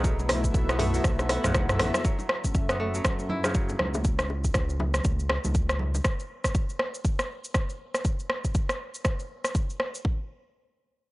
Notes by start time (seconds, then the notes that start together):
Already playing: B1 B3 D#4
0.04 F#3 A3 B3 E4 F#4 A4 E5, kick, muted conga, cabasa
0.19 low bongo, cabasa
0.29 cross-stick, open hi-hat, high bongo, muted conga, low conga
0.44 B3 F#4 A4 E5, kick, high conga, cabasa
0.54 B1, kick, muted conga, cabasa
0.69 B3, cross-stick, cabasa
0.79 A3 B3 F#4 A4 E5, mid tom, open hi-hat, high bongo, high conga, low conga
0.94 F#3, open hi-hat, muted conga, cabasa
1.04 B1, kick, cross-stick, high conga, cabasa
1.19 B3 F#4 A4 E5, cross-stick, high bongo, muted conga, cabasa
1.29 B3 E4 F#4 A4 F#5, cross-stick, open hi-hat, high bongo
1.44 B1 C#3, cross-stick, mid tom, muted conga, high conga, low conga, cabasa
1.54 F#3, kick, cross-stick, high conga, cabasa
1.69 B3 F#4 A4 E5, cross-stick, mid tom, muted conga, high conga, cabasa
1.79 A1, cross-stick, open hi-hat, low conga
1.94 cross-stick, low bongo, cabasa
2.05 F#3 C#4 F#4 A4 E5, kick, cabasa
2.19 low bongo, cabasa
2.29 cross-stick, muted conga
2.44 C#4 F#4 A4 E5, kick, low bongo, high conga, cabasa
2.55 F#1, kick, cabasa
2.69 B3, cross-stick, cabasa
2.80 A3 C#4 F#4 A4 E5, high conga
2.94 F#3, muted conga, cabasa
3.04 F#2, kick, cross-stick, cabasa
3.19 C#4 F#4 A4 E5, muted conga, cabasa
3.29 E4, low conga
3.44 C#3, cross-stick, high bongo, low bongo, muted conga, cabasa
3.54 F#3 C#4 F#4 A4 F#5, kick, cabasa
3.69 low bongo, muted conga, cabasa
3.79 C#2, cross-stick, low conga
3.94 high bongo, high conga, cabasa
4.04 kick, muted conga, cabasa
4.19 cross-stick, low bongo, cabasa
4.29 high bongo, muted conga
4.44 kick, low bongo, cabasa
4.54 C#2, kick, cross-stick, muted conga, cabasa
4.69 cabasa
4.80 high bongo, high conga, low conga
4.94 cross-stick, muted conga, cabasa
5.03 C#2, kick, high conga, cabasa
5.19 muted conga, cabasa
5.29 cross-stick, high bongo
5.44 C#2, muted conga, high conga, low conga, cabasa
5.54 kick, high conga, cabasa
5.69 cross-stick, muted conga, high conga, cabasa
5.79 low conga
5.95 low bongo, cabasa
6.04 kick, cross-stick, cabasa
6.20 cabasa
6.44 kick, cross-stick, cabasa
6.55 kick, cabasa
6.70 cabasa
6.79 cross-stick
6.95 cabasa
7.05 kick, cabasa
7.19 cross-stick, cabasa
7.44 cabasa
7.54 kick, cross-stick, cabasa
7.70 cabasa
7.95 cross-stick, cabasa
8.05 kick, cabasa
8.20 cabasa
8.30 cross-stick
8.45 kick, cabasa
8.55 kick, cabasa
8.69 cross-stick, cabasa
8.94 cabasa
9.05 kick, cross-stick, cabasa
9.19 cabasa
9.44 cross-stick, cabasa
9.55 kick, cabasa
9.70 cabasa
9.80 cross-stick
9.95 cabasa
10.05 kick